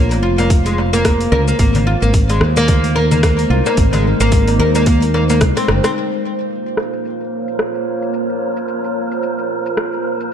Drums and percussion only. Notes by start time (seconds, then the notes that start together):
0.11 open hi-hat, darbuka ka, shaker
0.39 open hi-hat, darbuka ka, shaker
0.50 kick, open hi-hat, shaker
0.66 open hi-hat, shaker
0.78 darbuka tek
0.93 open hi-hat, darbuka ka, shaker
1.05 kick, cross-stick, open hi-hat, shaker
1.21 open hi-hat, shaker
1.32 darbuka tek, darbuka dum
1.48 shaker
1.59 kick, open hi-hat, shaker
1.75 open hi-hat, darbuka tek, darbuka dum, shaker
2.02 shaker
2.14 kick, open hi-hat, shaker
2.30 open hi-hat, darbuka ka, shaker
2.41 cross-stick
2.56 open hi-hat, darbuka ka, shaker
2.68 kick, open hi-hat, darbuka dum, shaker
2.84 open hi-hat, shaker
3.11 open hi-hat, darbuka dum, shaker
3.23 kick, cross-stick, open hi-hat, shaker
3.39 open hi-hat, shaker
3.66 darbuka tek, shaker
3.77 kick, open hi-hat, shaker
3.93 open hi-hat, darbuka tek, darbuka dum, shaker
4.20 open hi-hat, shaker
4.32 kick, open hi-hat, shaker
4.48 open hi-hat, darbuka ka, shaker
4.60 darbuka tek
4.75 open hi-hat, darbuka ka, shaker
4.86 kick, open hi-hat, shaker
5.02 open hi-hat, shaker
5.14 darbuka tek
5.30 open hi-hat, darbuka ka, shaker
5.41 kick, cross-stick, open hi-hat, shaker
5.57 cross-stick, open hi-hat, shaker
5.68 cross-stick, darbuka tek, darbuka dum
5.84 cross-stick, open hi-hat, darbuka ka, shaker
5.95 shaker
6.11 shaker
6.39 shaker
6.50 shaker
6.66 shaker
6.77 cross-stick
6.93 shaker
7.05 shaker
7.21 shaker
7.48 shaker
7.59 cross-stick, shaker
7.75 shaker
8.02 shaker
8.14 shaker
8.29 shaker
8.57 shaker
8.68 shaker
8.84 shaker
9.11 shaker
9.23 shaker
9.39 shaker
9.66 shaker
9.77 cross-stick, shaker
9.93 shaker
10.20 shaker